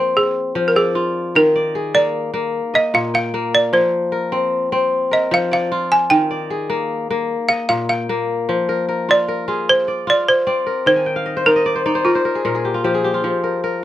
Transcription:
Already playing: kora F3 A#3 C4 A#4 D#5, balafon A#4
0.17 balafon G#4
0.55 kora F3
0.68 balafon A#4
0.76 balafon G#4, kora D5
0.95 kora F4
1.35 kora D#3, balafon A#4
1.56 kora D5
1.75 kora G#4
1.94 kora A#3, balafon D5
2.34 kora A#3
2.74 kora D#5, balafon D#5
2.94 kora A#2, balafon F5
3.14 balafon F5, kora G5
3.34 kora A#3
3.55 balafon D5
3.73 kora F3, balafon C5
4.12 kora A#4
4.32 kora C4
4.72 kora C4
5.11 kora A#4, balafon D#5
5.31 kora F3, balafon F5
5.51 kora D5, balafon F5
5.72 kora F4
5.92 balafon G#5
6.10 kora D#3, balafon G5
6.31 kora D5
6.50 kora G#4
6.70 kora A#3
7.10 kora A#3
7.49 kora D#5, balafon F5
7.69 kora A#2, balafon F5
7.89 balafon F5, kora G5
8.09 kora A#3
8.49 kora F3
8.69 kora A#4
8.89 kora A#4
9.09 kora F4, balafon D5
9.28 kora A#4
9.48 kora F4 G#4
9.69 balafon C5
9.88 kora D5
10.07 kora F4, balafon D5
10.29 balafon C5
10.47 kora C4 D5
10.66 kora A#4
10.86 kora D#3, balafon C5
10.96 kora G#5
11.06 kora G5
11.16 kora F5
11.26 kora D#5
11.37 kora C5
11.46 kora D#4 D5, balafon A#4
11.56 kora D#5
11.66 kora D5
11.76 kora C5
11.86 kora D#4 D5
11.95 kora C5
12.05 balafon F4, kora A#4
12.15 kora C5
12.25 kora A#4
12.35 kora G#4
12.45 kora A#2 A#4
12.55 kora G#4
12.65 kora G4
12.74 kora F4
12.84 kora F3 G4
12.94 kora G#4
13.04 kora G4
13.14 kora F4
13.24 kora F3
13.44 kora A#4
13.64 kora A#4

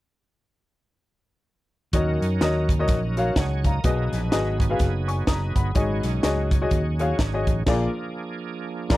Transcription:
1.93 fingered electric bass D#2, upright piano D#3 F#4 A#4 C#5 D#5, tonewheel organ F#3 C#4 D#4 A#4, kick, closed hi-hat
2.21 fingered electric bass F#2, closed hi-hat
2.41 fingered electric bass D#2, upright piano F#4 A#4 C#5 D#5, snare, closed hi-hat
2.69 kick, closed hi-hat
2.79 upright piano F#4 A#4 C#5 D#5
2.88 fingered electric bass A#1, kick, snare, closed hi-hat
3.17 upright piano F#4 A#4 C#5 F5, closed hi-hat
3.36 fingered electric bass C#2, tonewheel organ G#4 C#5, upright piano C#5 F#5, kick, snare, closed hi-hat
3.64 tonewheel organ A#4 D#5, upright piano F5 A#5, kick, closed hi-hat
3.84 fingered electric bass B1, upright piano B2 F#4 G#4 B4 D#5, tonewheel organ F#3 B3 D#4 G4, kick, closed hi-hat
3.90 tonewheel organ G#4
4.13 fingered electric bass A#1, snare, closed hi-hat
4.32 fingered electric bass G#1, upright piano F#4 G#4 B4 D#5, snare, closed hi-hat
4.60 kick, closed hi-hat
4.70 upright piano F#4 G#4 B4 F5
4.79 fingered electric bass F#1, kick, snare, closed hi-hat
5.08 upright piano G#5 C#6, closed hi-hat
5.27 fingered electric bass F#1, upright piano A#5 D#6, kick, snare, closed hi-hat
5.56 fingered electric bass G1, upright piano F#5 B5, kick, closed hi-hat
5.75 fingered electric bass G#1, upright piano G#2 F#4 G#4 C#5 D#5, tonewheel organ F#3 C#4 D#4 G#4, kick, closed hi-hat
6.03 fingered electric bass B1, snare, closed hi-hat
6.23 fingered electric bass C#2, upright piano F#4 G#4 C#5 D#5, snare, closed hi-hat
6.51 kick, closed hi-hat
6.62 upright piano F#4 G#4 C#5 D#5
6.71 fingered electric bass D#2, kick, closed hi-hat
6.99 upright piano F#4 G#4 C#5 F5, closed hi-hat
7.19 fingered electric bass G#1, kick, snare, closed hi-hat
7.33 upright piano F#4 G#4 C#5 D#5
7.47 fingered electric bass A1, kick, closed hi-hat
7.66 fingered electric bass A#1, upright piano A#2 F4 G#4 A#4 D5, tonewheel organ F3 A#3 D4 G#4, kick, snare, crash
8.90 fingered electric bass A#1, upright piano F4 G#4 A#4 D5 A#5, kick, snare, crash

